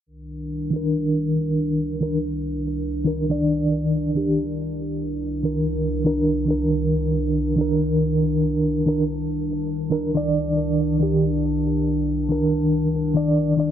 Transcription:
X:1
M:4/4
L:1/16
Q:"Swing 16ths" 1/4=70
K:Cm
V:1 name="Tine electric piano"
z3 [E,DB]6 [E,DB] z4 [E,DB] [E,Dd]- | [E,Dd]3 [E,DG] z4 z [E,DB]3 [E,DB] z [E,DB]2- | [E,DB]3 [E,DB]6 [E,DB] z4 [E,DB] [E,Dd]- | [E,Dd]3 [E,DG] z4 z [E,DB]3 z [E,Dd]2 [E,Dd] |]
V:2 name="Ambient pad" clef=bass
[C,,E,DB]16- | [C,,E,DB]16- | [C,,E,DB]16- | [C,,E,DB]16 |]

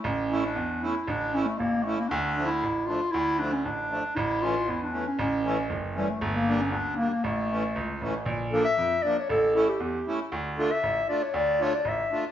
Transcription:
X:1
M:2/4
L:1/16
Q:1/4=117
K:none
V:1 name="Clarinet"
^C3 D3 E2 | D2 ^C A, _B,2 A, B, | D3 E3 F2 | E2 D ^C D4 |
E2 F2 E D2 ^C | ^C4 z2 G, A,- | A, _B,2 ^C D2 B, B, | A,6 z2 |
z2 A e3 d ^c | A2 A G G3 z | z2 A e3 d ^c | d2 ^c d e3 z |]
V:2 name="Accordion"
z2 [A,^CE] z3 [A,CE] z | z2 [A,^CE] z3 [A,CE] z | z2 [F,A,D] z3 [F,A,D] z | z2 [F,A,D] z3 [F,A,D] z |
z2 [E,A,^C] z3 [E,A,C] z | z2 [E,A,^C] z3 [E,A,C] z | z2 [G,_B,D] z3 [G,B,D] z | z2 [E,A,^C] z3 [E,A,C] z |
z2 [F,_B,D] z3 [F,B,D] z | z2 [A,^CE] z3 [A,CE] z | z2 [A,DF] z3 [A,DF] z | z2 [A,DF] z3 [A,DF] z |]
V:3 name="Grand piano" clef=bass
A,,,4 E,,4 | A,,,4 A,,,4 | D,,4 A,,,4 | D,,4 A,,,4 |
A,,,4 E,,4 | A,,,4 ^F,,,4 | G,,,4 D,,4 | A,,,4 ^C,,2 A,,,2 |
_B,,,4 F,,2 z2 | A,,,4 E,,2 z2 | D,,4 A,,,2 z2 | D,,4 A,,,2 z2 |]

